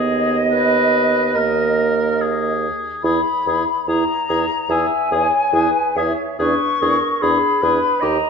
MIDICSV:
0, 0, Header, 1, 6, 480
1, 0, Start_track
1, 0, Tempo, 834492
1, 1746, Time_signature, 4, 2, 24, 8
1, 3177, Tempo, 868307
1, 3657, Tempo, 805369
1, 4793, End_track
2, 0, Start_track
2, 0, Title_t, "Flute"
2, 0, Program_c, 0, 73
2, 0, Note_on_c, 0, 75, 61
2, 1500, Note_off_c, 0, 75, 0
2, 1738, Note_on_c, 0, 83, 74
2, 2228, Note_on_c, 0, 82, 73
2, 2236, Note_off_c, 0, 83, 0
2, 2706, Note_on_c, 0, 80, 72
2, 2715, Note_off_c, 0, 82, 0
2, 3417, Note_on_c, 0, 76, 62
2, 3426, Note_off_c, 0, 80, 0
2, 3658, Note_off_c, 0, 76, 0
2, 3661, Note_on_c, 0, 85, 86
2, 4148, Note_on_c, 0, 83, 66
2, 4157, Note_off_c, 0, 85, 0
2, 4630, Note_on_c, 0, 82, 86
2, 4639, Note_off_c, 0, 83, 0
2, 4793, Note_off_c, 0, 82, 0
2, 4793, End_track
3, 0, Start_track
3, 0, Title_t, "Clarinet"
3, 0, Program_c, 1, 71
3, 0, Note_on_c, 1, 75, 59
3, 1480, Note_off_c, 1, 75, 0
3, 2700, Note_on_c, 1, 76, 49
3, 2921, Note_off_c, 1, 76, 0
3, 2942, Note_on_c, 1, 73, 46
3, 3179, Note_on_c, 1, 71, 47
3, 3187, Note_off_c, 1, 73, 0
3, 3413, Note_on_c, 1, 73, 55
3, 3422, Note_off_c, 1, 71, 0
3, 3653, Note_off_c, 1, 73, 0
3, 3656, Note_on_c, 1, 71, 53
3, 3902, Note_on_c, 1, 70, 52
3, 3911, Note_off_c, 1, 71, 0
3, 4148, Note_on_c, 1, 68, 53
3, 4157, Note_off_c, 1, 70, 0
3, 4389, Note_on_c, 1, 71, 53
3, 4398, Note_off_c, 1, 68, 0
3, 4615, Note_on_c, 1, 75, 60
3, 4624, Note_off_c, 1, 71, 0
3, 4793, Note_off_c, 1, 75, 0
3, 4793, End_track
4, 0, Start_track
4, 0, Title_t, "Oboe"
4, 0, Program_c, 2, 68
4, 0, Note_on_c, 2, 68, 50
4, 236, Note_off_c, 2, 68, 0
4, 293, Note_on_c, 2, 71, 63
4, 776, Note_on_c, 2, 70, 51
4, 784, Note_off_c, 2, 71, 0
4, 1270, Note_on_c, 2, 68, 42
4, 1279, Note_off_c, 2, 70, 0
4, 1750, Note_off_c, 2, 68, 0
4, 1755, Note_on_c, 2, 68, 46
4, 1847, Note_off_c, 2, 68, 0
4, 2001, Note_on_c, 2, 68, 39
4, 2093, Note_off_c, 2, 68, 0
4, 2236, Note_on_c, 2, 68, 43
4, 2328, Note_off_c, 2, 68, 0
4, 2470, Note_on_c, 2, 68, 42
4, 2562, Note_off_c, 2, 68, 0
4, 2702, Note_on_c, 2, 68, 44
4, 2794, Note_off_c, 2, 68, 0
4, 2944, Note_on_c, 2, 68, 42
4, 3036, Note_off_c, 2, 68, 0
4, 3187, Note_on_c, 2, 68, 44
4, 3275, Note_off_c, 2, 68, 0
4, 3426, Note_on_c, 2, 68, 45
4, 3515, Note_off_c, 2, 68, 0
4, 3657, Note_on_c, 2, 68, 47
4, 3753, Note_off_c, 2, 68, 0
4, 3909, Note_on_c, 2, 68, 43
4, 4004, Note_off_c, 2, 68, 0
4, 4155, Note_on_c, 2, 68, 51
4, 4250, Note_off_c, 2, 68, 0
4, 4401, Note_on_c, 2, 68, 44
4, 4496, Note_off_c, 2, 68, 0
4, 4625, Note_on_c, 2, 67, 53
4, 4721, Note_off_c, 2, 67, 0
4, 4793, End_track
5, 0, Start_track
5, 0, Title_t, "French horn"
5, 0, Program_c, 3, 60
5, 0, Note_on_c, 3, 59, 53
5, 781, Note_on_c, 3, 58, 51
5, 790, Note_off_c, 3, 59, 0
5, 1558, Note_off_c, 3, 58, 0
5, 1750, Note_on_c, 3, 64, 44
5, 1842, Note_off_c, 3, 64, 0
5, 2003, Note_on_c, 3, 64, 38
5, 2095, Note_off_c, 3, 64, 0
5, 2235, Note_on_c, 3, 64, 43
5, 2327, Note_off_c, 3, 64, 0
5, 2474, Note_on_c, 3, 64, 38
5, 2566, Note_off_c, 3, 64, 0
5, 2707, Note_on_c, 3, 64, 44
5, 2799, Note_off_c, 3, 64, 0
5, 2947, Note_on_c, 3, 64, 41
5, 3039, Note_off_c, 3, 64, 0
5, 3181, Note_on_c, 3, 64, 43
5, 3269, Note_off_c, 3, 64, 0
5, 3421, Note_on_c, 3, 64, 45
5, 3509, Note_off_c, 3, 64, 0
5, 3665, Note_on_c, 3, 62, 48
5, 3761, Note_off_c, 3, 62, 0
5, 3911, Note_on_c, 3, 62, 41
5, 4007, Note_off_c, 3, 62, 0
5, 4151, Note_on_c, 3, 62, 45
5, 4246, Note_off_c, 3, 62, 0
5, 4394, Note_on_c, 3, 62, 44
5, 4489, Note_off_c, 3, 62, 0
5, 4626, Note_on_c, 3, 63, 49
5, 4722, Note_off_c, 3, 63, 0
5, 4793, End_track
6, 0, Start_track
6, 0, Title_t, "Bassoon"
6, 0, Program_c, 4, 70
6, 0, Note_on_c, 4, 39, 49
6, 758, Note_off_c, 4, 39, 0
6, 776, Note_on_c, 4, 39, 47
6, 1540, Note_off_c, 4, 39, 0
6, 1744, Note_on_c, 4, 40, 49
6, 1836, Note_off_c, 4, 40, 0
6, 1991, Note_on_c, 4, 40, 44
6, 2083, Note_off_c, 4, 40, 0
6, 2228, Note_on_c, 4, 40, 46
6, 2320, Note_off_c, 4, 40, 0
6, 2469, Note_on_c, 4, 40, 51
6, 2561, Note_off_c, 4, 40, 0
6, 2697, Note_on_c, 4, 40, 53
6, 2789, Note_off_c, 4, 40, 0
6, 2939, Note_on_c, 4, 40, 46
6, 3031, Note_off_c, 4, 40, 0
6, 3177, Note_on_c, 4, 40, 47
6, 3266, Note_off_c, 4, 40, 0
6, 3414, Note_on_c, 4, 40, 44
6, 3503, Note_off_c, 4, 40, 0
6, 3656, Note_on_c, 4, 40, 52
6, 3751, Note_off_c, 4, 40, 0
6, 3909, Note_on_c, 4, 40, 48
6, 4005, Note_off_c, 4, 40, 0
6, 4155, Note_on_c, 4, 40, 53
6, 4250, Note_off_c, 4, 40, 0
6, 4393, Note_on_c, 4, 40, 54
6, 4488, Note_off_c, 4, 40, 0
6, 4630, Note_on_c, 4, 39, 58
6, 4725, Note_off_c, 4, 39, 0
6, 4793, End_track
0, 0, End_of_file